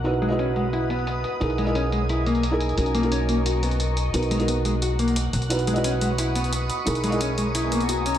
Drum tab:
HH |xxxxx-x-x-xxx-x-|xxxxx-x-x-xxx-xx|xxxxx-x-x-xxx-x-|xxxxx-x-x-xxx-xx|

HH |xxxxx-x-x-xxx-x-|xxxxx-x-x-xxx-xx|